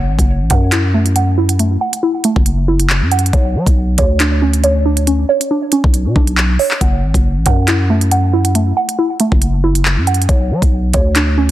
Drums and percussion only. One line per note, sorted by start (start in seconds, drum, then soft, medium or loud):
0.19 kick loud
0.19 closed hi-hat medium
0.50 kick medium
0.50 closed hi-hat loud
0.72 clap loud
0.72 closed hi-hat medium
1.06 closed hi-hat medium
1.16 closed hi-hat medium
1.49 closed hi-hat medium
1.59 closed hi-hat medium
1.93 closed hi-hat medium
2.24 closed hi-hat loud
2.36 kick loud
2.46 closed hi-hat medium
2.80 closed hi-hat medium
2.90 clap loud
3.11 closed hi-hat medium
3.19 closed hi-hat medium
3.26 closed hi-hat medium
3.33 kick loud
3.33 closed hi-hat medium
3.67 kick medium
3.67 closed hi-hat medium
3.98 kick loud
3.98 closed hi-hat loud
4.20 clap loud
4.20 closed hi-hat medium
4.53 closed hi-hat medium
4.64 closed hi-hat medium
4.97 closed hi-hat medium
5.07 closed hi-hat medium
5.41 closed hi-hat medium
5.72 closed hi-hat loud
5.84 kick loud
5.94 closed hi-hat medium
6.16 kick medium
6.27 closed hi-hat medium
6.38 clap loud
6.59 open hi-hat medium
6.71 clap medium
6.81 kick loud
6.81 closed hi-hat medium
7.14 kick loud
7.14 closed hi-hat medium
7.46 kick medium
7.46 closed hi-hat loud
7.68 clap loud
7.68 closed hi-hat medium
8.01 closed hi-hat medium
8.11 closed hi-hat medium
8.45 closed hi-hat medium
8.55 closed hi-hat medium
8.89 closed hi-hat medium
9.20 closed hi-hat loud
9.32 kick medium
9.42 closed hi-hat medium
9.75 closed hi-hat medium
9.85 clap loud
10.07 closed hi-hat medium
10.14 closed hi-hat medium
10.22 closed hi-hat medium
10.29 kick loud
10.29 closed hi-hat medium
10.62 kick loud
10.62 closed hi-hat medium
10.94 kick loud
10.94 closed hi-hat loud
11.15 clap loud
11.15 closed hi-hat medium